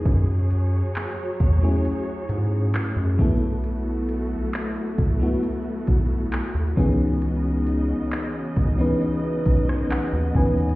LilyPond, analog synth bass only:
\new Staff \with { instrumentName = "Analog synth bass" } { \clef bass \time 4/4 \key cis \minor \tempo 4 = 67 fis,4 r8 e,8 r8 gis,8 r16 fis,16 b,,8~ | b,,4 r8 cis,8 r8 b,,8 r16 dis,16 cis,8~ | cis,4 r8 cis,8 r8 b,,8 r16 dis,16 dis,8 | }